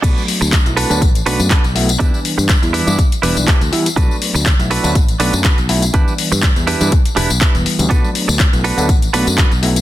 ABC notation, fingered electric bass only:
X:1
M:4/4
L:1/16
Q:"Swing 16ths" 1/4=122
K:Bm
V:1 name="Fingered electric bass" clef=bass
B,,, z2 D,, z B,,, z D,, A,,, z B,,, F,, z B,,,3 | E,, z2 G,, z E,, z G,, z2 E,,, B,,, z D,, z2 | B,,, z2 D,, z B,,, z D,, A,,, z B,,, F,, z B,,,3 | E,, z2 G,, z E,, z G,, z2 E,,, B,,, z E,,, z D,, |
z3 D,, z B,,, z D,, A,,, z B,,, F,, z B,,,3 |]